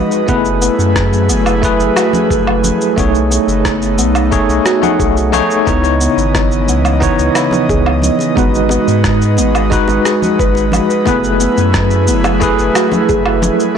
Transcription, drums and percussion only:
0.12 shaker soft
0.28 kick loud
0.28 shaker soft
0.45 shaker soft
0.62 shaker medium
0.79 shaker soft
0.96 kick loud
0.96 cross-stick medium
0.96 shaker soft
1.13 shaker soft
1.29 high conga medium
1.29 shaker medium
1.46 high conga medium
1.46 low woodblock medium
1.46 shaker soft
1.63 kick loud
1.63 shaker soft
1.80 shaker soft
1.97 cross-stick medium
1.97 low woodblock medium
1.97 shaker medium
2.13 low conga medium
2.13 shaker soft
2.30 kick loud
2.30 shaker soft
2.47 low woodblock medium
2.64 low conga medium
2.64 shaker medium
2.81 shaker soft
2.98 kick loud
2.98 shaker soft
3.15 shaker soft
3.32 shaker medium
3.48 shaker soft
3.65 kick loud
3.65 cross-stick medium
3.65 shaker soft
3.82 shaker soft
3.98 high conga medium
3.98 shaker medium
4.15 high conga medium
4.15 low woodblock medium
4.15 shaker soft
4.32 kick loud
4.32 shaker soft
4.49 shaker soft
4.66 cross-stick medium
4.66 shaker medium
4.83 low conga medium
4.83 shaker soft
5.00 kick loud
5.00 shaker soft
5.17 shaker soft
5.33 low conga medium
5.33 low woodblock medium
5.33 shaker medium
5.50 shaker soft
5.67 kick medium
5.67 shaker soft
5.84 high bongo soft
5.84 shaker soft
6.01 shaker medium
6.18 shaker soft
6.35 kick loud
6.35 cross-stick medium
6.35 high bongo medium
6.35 shaker soft
6.52 shaker soft
6.67 high conga medium
6.67 shaker medium
6.85 high conga medium
6.85 low woodblock medium
6.85 shaker soft
7.02 kick medium
7.02 high bongo soft
7.02 shaker soft
7.19 shaker soft
7.35 cross-stick medium
7.35 low woodblock medium
7.35 shaker medium
7.51 high bongo medium
7.51 low conga medium
7.51 shaker soft
7.69 kick loud
7.69 shaker soft
7.86 low woodblock medium
8.02 low conga medium
8.02 shaker medium
8.19 high bongo soft
8.19 shaker soft
8.37 kick loud
8.37 shaker soft
8.54 shaker soft
8.69 high bongo medium
8.69 shaker medium
8.88 shaker soft
9.04 kick loud
9.04 cross-stick medium
9.04 shaker soft
9.22 shaker soft
9.37 high bongo soft
9.37 high conga medium
9.37 shaker medium
9.54 high conga medium
9.54 low woodblock medium
9.54 shaker soft
9.72 kick loud
9.72 shaker soft
9.88 high bongo medium
9.88 shaker soft
10.05 cross-stick medium
10.05 shaker medium
10.22 low conga medium
10.22 shaker soft
10.39 kick loud
10.39 shaker soft
10.55 high bongo soft
10.55 shaker soft
10.72 low conga medium
10.72 low woodblock medium
10.72 shaker medium
10.90 shaker soft
11.06 kick medium
11.06 high bongo medium
11.06 shaker soft
11.24 shaker soft
11.40 shaker medium
11.57 shaker soft
11.73 kick medium
11.73 cross-stick medium
11.73 high bongo medium
11.73 shaker soft
11.91 shaker soft
12.07 high conga medium
12.07 shaker medium
12.23 high bongo medium
12.23 high conga medium
12.23 low woodblock medium
12.23 shaker soft
12.41 kick loud
12.41 shaker soft
12.59 shaker soft
12.75 cross-stick medium
12.75 low woodblock medium
12.75 shaker medium
12.92 high bongo medium
12.92 low conga medium
12.92 shaker soft
13.09 kick loud
13.09 shaker soft
13.26 low woodblock medium
13.42 high bongo medium
13.42 low conga medium
13.42 shaker medium
13.60 shaker soft

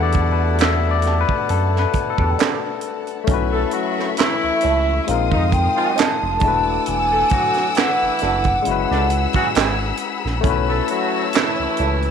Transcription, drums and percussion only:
0.12 kick medium
0.12 closed hi-hat medium
0.58 snare loud
0.58 clap medium
0.58 closed hi-hat medium
1.02 snare soft
1.02 closed hi-hat medium
1.29 kick medium
1.49 closed hi-hat medium
1.76 snare soft
1.93 kick medium
1.93 closed hi-hat medium
2.18 kick medium
2.39 snare loud
2.39 clap medium
2.39 closed hi-hat medium
2.81 closed hi-hat medium
3.07 closed hi-hat soft
3.27 kick loud
3.27 closed hi-hat medium
3.71 closed hi-hat medium
3.99 snare soft
4.17 snare loud
4.17 clap medium
4.17 closed hi-hat medium
4.61 closed hi-hat medium
5.08 closed hi-hat medium
5.32 kick medium
5.52 kick medium
5.52 closed hi-hat medium
5.97 snare loud
5.97 clap loud
5.97 closed hi-hat medium
6.40 kick loud
6.40 closed hi-hat medium
6.86 closed hi-hat medium
7.29 kick loud
7.29 closed hi-hat medium
7.54 snare soft
7.54 closed hi-hat soft
7.75 snare loud
7.75 clap medium
7.75 closed hi-hat medium
8.19 snare soft
8.19 closed hi-hat medium
8.44 kick medium
8.44 closed hi-hat soft
8.65 closed hi-hat medium
8.92 snare soft
9.10 closed hi-hat medium
9.33 kick medium
9.33 closed hi-hat soft
9.55 snare loud
9.55 clap loud
9.55 closed hi-hat medium
9.97 closed hi-hat medium
10.26 snare soft
10.44 kick loud
10.44 closed hi-hat medium
10.88 closed hi-hat medium
11.33 snare loud
11.33 clap medium
11.33 closed hi-hat medium
11.77 closed hi-hat medium
12.02 closed hi-hat soft

